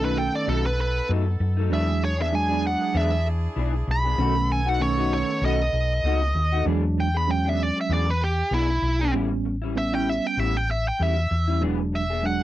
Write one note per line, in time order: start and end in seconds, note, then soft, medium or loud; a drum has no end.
0.00 0.28 B1 loud
0.00 0.67 D#3 medium
0.00 0.67 A3 medium
0.00 0.20 A3 medium
0.00 1.67 B3 medium
0.00 0.67 C#4 medium
0.00 1.67 D#4 medium
0.00 0.20 D#4 medium
0.00 1.67 A4 medium
0.05 0.21 F#3 soft
0.05 0.17 B4 medium
0.18 0.34 G5 loud
0.33 0.48 D5 medium
0.33 muted clean electric guitar stroke soft
0.47 0.99 B1 medium
0.47 0.64 B2 medium
0.47 0.65 F#3 medium
0.47 0.64 A3 medium
0.47 0.63 D#4 medium
0.47 0.65 A4 medium
0.64 0.79 B4 medium
0.64 muted clean electric guitar stroke medium
0.78 1.10 B4 loud
0.78 muted clean electric guitar stroke soft
1.08 1.35 F#2 medium
1.08 1.26 B2 medium
1.08 1.26 F#3 medium
1.08 1.26 A3 medium
1.08 1.25 D#4 medium
1.26 muted clean electric guitar stroke soft
1.40 1.71 F#2 loud
1.40 muted clean electric guitar stroke soft
1.57 1.71 F#3 soft
1.57 1.71 A3 medium
1.57 1.71 D#4 medium
1.70 2.75 E2 loud
1.70 1.88 E3 medium
1.70 2.12 F#3 medium
1.70 2.12 G#3 medium
1.70 1.88 B3 medium
1.70 2.12 D4 medium
1.70 4.16 D4 medium
1.70 1.87 D4 medium
1.70 4.16 E4 medium
1.70 4.16 G#4 medium
1.70 1.87 G#4 medium
1.70 2.02 E5 loud
1.88 muted clean electric guitar stroke soft
2.02 2.20 C#5 loud
2.02 muted clean electric guitar stroke soft
2.18 2.32 B3 soft
2.18 2.32 D4 medium
2.18 2.32 G#4 medium
2.18 2.34 E5 medium
2.32 3.14 F#3 medium
2.32 3.14 G#3 medium
2.32 3.14 D4 medium
2.32 2.64 G#5 loud
2.32 muted clean electric guitar stroke soft
2.49 2.68 B3 soft
2.49 2.67 D4 medium
2.49 2.66 G#4 medium
2.67 2.95 F#5 medium
2.80 muted clean electric guitar stroke soft
2.94 3.46 E2 loud
2.94 3.11 E3 medium
2.94 3.11 B3 medium
2.94 3.10 D4 medium
2.94 3.10 G#4 medium
2.94 3.26 E5 loud
3.11 muted clean electric guitar stroke soft
3.25 muted clean electric guitar stroke soft
3.56 3.82 B1 medium
3.56 3.73 E3 medium
3.56 3.74 B3 medium
3.56 3.73 D4 medium
3.56 3.72 G#4 medium
3.74 muted clean electric guitar stroke soft
3.87 4.13 B1 medium
3.87 muted clean electric guitar stroke soft
3.91 4.49 B5 loud
4.04 4.19 B3 soft
4.04 4.19 D4 medium
4.04 4.18 G#4 medium
4.18 5.22 B1 loud
4.18 4.36 B2 medium
4.18 4.59 D#3 medium
4.18 4.59 A3 medium
4.18 4.36 A3 medium
4.18 6.64 B3 medium
4.18 4.60 C#4 medium
4.18 6.64 D#4 medium
4.18 4.35 D#4 medium
4.18 4.34 F#4 medium
4.18 6.64 A4 medium
4.36 muted clean electric guitar stroke soft
4.49 4.69 G#5 loud
4.49 muted clean electric guitar stroke soft
4.66 4.80 A3 soft
4.66 4.80 D#4 medium
4.66 4.80 F#4 medium
4.66 4.81 F#5 medium
4.80 5.62 D#3 medium
4.80 5.62 A3 medium
4.80 5.62 C#4 medium
4.80 5.11 C#5 loud
4.80 muted clean electric guitar stroke soft
4.98 5.16 A3 medium
4.98 5.16 D#4 medium
4.98 5.15 F#4 medium
5.14 5.43 C#5 medium
5.29 muted clean electric guitar stroke soft
5.42 5.68 B1 loud
5.42 5.60 B2 medium
5.42 5.60 A3 medium
5.42 5.60 D#4 medium
5.42 5.59 F#4 medium
5.42 6.64 D#5 loud
5.60 muted clean electric guitar stroke medium
5.73 6.01 B1 medium
5.73 muted clean electric guitar stroke soft
6.03 6.32 C#2 medium
6.03 6.21 B2 medium
6.03 6.22 A3 medium
6.03 6.22 D#4 medium
6.03 6.21 F#4 medium
6.22 muted clean electric guitar stroke soft
6.35 6.63 D#2 medium
6.35 muted clean electric guitar stroke soft
6.52 6.67 A3 soft
6.52 6.67 D#4 medium
6.52 6.66 F#4 medium
6.65 7.70 E2 loud
6.65 6.83 E3 medium
6.65 7.07 F#3 medium
6.65 7.07 G#3 medium
6.65 6.84 B3 medium
6.65 7.07 D4 medium
6.65 6.83 D4 medium
6.65 6.82 G#4 medium
6.84 muted clean electric guitar stroke soft
6.98 7.15 G5 medium
6.98 muted clean electric guitar stroke soft
7.14 7.28 B3 soft
7.14 7.28 D4 soft
7.14 7.28 G#4 medium
7.14 7.29 B5 medium
7.27 8.09 F#3 medium
7.27 8.09 G#3 medium
7.27 8.10 C#4 medium
7.27 7.49 G5 medium
7.27 muted clean electric guitar stroke soft
7.45 7.64 B3 soft
7.45 7.63 D4 soft
7.45 7.62 G#4 medium
7.45 7.63 E5 medium
7.63 7.78 D5 medium
7.76 muted clean electric guitar stroke soft
7.81 7.92 E5 medium
7.89 8.41 E2 medium
7.89 8.07 E3 medium
7.89 8.07 B3 medium
7.89 8.06 D4 medium
7.89 8.05 G#4 medium
7.93 8.08 D5 medium
8.07 8.22 B4 medium
8.07 muted clean electric guitar stroke soft
8.20 8.52 G4 medium
8.20 muted clean electric guitar stroke soft
8.51 8.77 B1 medium
8.51 8.68 E3 medium
8.51 8.69 B3 medium
8.51 8.69 D4 medium
8.51 9.13 E4 medium
8.51 8.68 G#4 medium
8.69 muted clean electric guitar stroke soft
8.82 9.14 B1 medium
8.82 muted clean electric guitar stroke soft
8.99 9.14 B3 soft
8.99 9.14 D4 medium
8.99 9.13 G#4 medium
9.13 10.18 A1 loud
9.13 9.31 A2 medium
9.13 9.55 G3 medium
9.13 9.31 G3 medium
9.13 9.55 B3 medium
9.13 9.55 C#4 medium
9.13 9.30 C#4 medium
9.13 9.29 E4 medium
9.31 muted clean electric guitar stroke soft
9.45 muted clean electric guitar stroke soft
9.62 9.75 G3 soft
9.62 9.76 C#4 medium
9.62 9.76 E4 medium
9.75 10.57 G3 medium
9.75 10.57 B3 medium
9.75 10.57 C#4 medium
9.75 9.94 E5 medium
9.75 muted clean electric guitar stroke soft
9.92 10.11 G3 soft
9.92 10.11 C#4 medium
9.92 10.10 E4 medium
9.92 10.09 G5 medium
10.09 10.27 E5 medium
10.24 10.40 G5 medium
10.24 muted clean electric guitar stroke soft
10.37 10.89 A1 medium
10.37 10.55 A2 medium
10.37 10.55 G3 medium
10.37 10.55 C#4 medium
10.37 10.54 E4 medium
10.37 10.57 E5 medium
10.55 10.69 G5 medium
10.55 muted clean electric guitar stroke soft
10.69 10.87 E5 medium
10.69 muted clean electric guitar stroke soft
10.88 11.02 G5 medium
10.99 11.26 E2 medium
10.99 11.16 A2 medium
10.99 11.17 G3 medium
10.99 11.16 C#4 medium
10.99 11.15 E4 medium
10.99 11.61 E5 medium
11.16 muted clean electric guitar stroke soft
11.30 11.63 E2 medium
11.30 muted clean electric guitar stroke soft
11.48 11.61 G3 soft
11.48 11.62 C#4 soft
11.48 11.61 E4 medium
11.61 12.43 E1 loud
11.61 11.79 E3 medium
11.61 12.02 F#3 medium
11.61 12.02 G#3 medium
11.61 11.79 B3 medium
11.61 12.03 D4 medium
11.61 11.79 D4 medium
11.61 11.78 G#4 medium
11.79 muted clean electric guitar stroke soft
11.93 12.24 E5 medium
11.93 muted clean electric guitar stroke soft
12.10 12.23 B3 soft
12.10 12.24 D4 soft
12.10 12.24 G#4 soft
12.23 12.43 F#3 medium
12.23 12.43 G#3 medium
12.23 12.43 D4 medium
12.23 12.42 F#5 medium
12.23 muted clean electric guitar stroke soft